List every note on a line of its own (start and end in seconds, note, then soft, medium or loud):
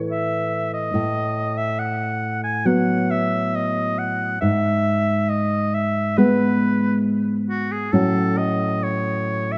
0.00 0.90 A2 soft
0.00 0.90 E3 soft
0.00 0.91 A3 soft
0.11 0.70 E5 medium
0.74 1.59 D#5 medium
0.94 4.38 A2 medium
1.57 1.80 E5 medium
1.79 2.43 F#5 medium
2.43 2.68 G#5 medium
2.65 4.37 F#3 soft
2.65 4.37 B3 soft
2.65 3.12 F#5 medium
3.10 3.57 E5 medium
3.55 4.00 D#5 medium
3.98 4.40 F#5 medium
4.41 7.89 G#2 soft
4.41 5.31 E5 medium
5.29 5.75 D#5 medium
5.74 6.19 E5 medium
6.17 7.89 G#3 soft
6.17 7.90 B3 soft
6.17 7.05 B4 medium
7.49 7.73 F#4 medium
7.72 7.94 G#4 soft
7.92 9.58 A2 soft
7.92 9.58 F#3 soft
7.92 9.58 C#4 soft
7.92 8.39 A4 medium
8.37 8.85 D#5 medium
8.83 9.54 C#5 soft
9.52 9.58 E5 medium